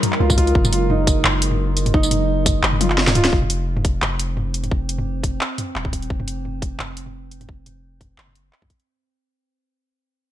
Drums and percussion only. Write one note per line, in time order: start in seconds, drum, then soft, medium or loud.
0.03 closed hi-hat medium
0.03 mid tom medium
0.12 clap soft
0.30 kick loud
0.30 mid tom medium
0.30 tambourine medium
0.38 kick medium
0.38 closed hi-hat medium
0.47 closed hi-hat soft
0.55 kick loud
0.65 mid tom medium
0.65 tambourine medium
0.73 closed hi-hat medium
0.90 mid tom medium
1.07 kick loud
1.07 closed hi-hat medium
1.07 tambourine medium
1.25 clap loud
1.25 mid tom medium
1.42 closed hi-hat medium
1.51 mid tom medium
1.77 closed hi-hat medium
1.77 tambourine soft
1.86 closed hi-hat soft
1.86 mid tom medium
1.94 kick loud
2.03 tambourine medium
2.11 closed hi-hat medium
2.11 mid tom medium
2.46 kick loud
2.46 closed hi-hat medium
2.46 mid tom medium
2.46 tambourine medium
2.63 clap loud
2.73 mid tom medium
2.81 closed hi-hat medium
2.81 high tom medium
2.90 clap soft
2.98 snare medium
3.07 snare medium
3.07 mid tom medium
3.07 tambourine medium
3.15 closed hi-hat medium
3.15 mid tom loud
3.25 snare medium
3.25 closed hi-hat soft
3.33 kick loud
3.42 mid tom medium
3.50 closed hi-hat medium
3.77 mid tom medium
3.85 kick loud
3.85 closed hi-hat medium
4.02 clap loud
4.02 mid tom medium
4.19 closed hi-hat medium
4.37 mid tom medium
4.54 closed hi-hat medium
4.64 closed hi-hat soft
4.64 mid tom medium
4.71 kick loud
4.89 closed hi-hat medium
4.99 mid tom medium
5.23 kick loud
5.23 closed hi-hat medium
5.23 mid tom soft
5.41 clap loud
5.58 closed hi-hat medium
5.58 mid tom medium
5.76 clap medium
5.85 kick loud
5.85 mid tom medium
5.93 kick medium
5.93 closed hi-hat medium
6.02 closed hi-hat soft
6.10 kick loud
6.20 mid tom medium
6.28 closed hi-hat medium
6.45 mid tom soft
6.62 kick loud
6.62 closed hi-hat medium
6.79 clap loud
6.79 mid tom medium
6.97 closed hi-hat medium
7.06 mid tom soft
7.31 closed hi-hat medium
7.41 closed hi-hat soft
7.41 mid tom medium
7.49 kick loud
7.66 closed hi-hat medium
7.66 mid tom soft
8.01 kick loud
8.01 closed hi-hat medium
8.01 mid tom medium
8.18 clap loud
8.27 mid tom soft
8.35 closed hi-hat medium
8.53 clap medium
8.62 kick loud
8.62 mid tom medium
8.70 kick medium
8.70 closed hi-hat medium
8.80 closed hi-hat soft